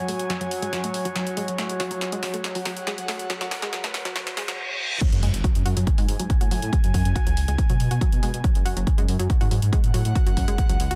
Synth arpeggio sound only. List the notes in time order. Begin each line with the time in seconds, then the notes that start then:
0.08 A3
0.30 F#3
0.41 F#3
0.62 G#3
0.73 F#3
0.84 A3
1.05 F#3
1.16 F#3
1.37 G#3
1.48 F#3
1.58 A3
1.80 F#3
1.91 F#3
2.12 G#3
2.23 F#3
2.34 A3
2.55 F#3
2.66 F#3
2.87 G#3
2.98 F#3
3.09 A3
3.30 F#3
3.41 F#3
3.62 G#3
3.73 F#3
3.84 A3
4.05 F#3
4.16 F#3
4.37 G#3
4.48 F#3
5.01 F#3
5.23 G#3
5.44 F#3
5.65 F#4
5.77 F#3
5.98 G#3
6.20 F#3
6.41 F#4
6.51 F#3
6.73 G#3
6.94 F#3
7.16 F#4
7.27 F#3
7.48 G#3
7.70 F#3
7.91 F#4
8.01 F#3
8.23 G#3
8.44 F#3
8.65 F#4
8.77 F#3
8.98 G#3
9.19 F#3
9.41 F#4
9.51 F#3
9.72 G#3
9.94 F#3
10.15 F#4
10.26 F#3
10.48 G#3
10.69 F#3
10.91 F#4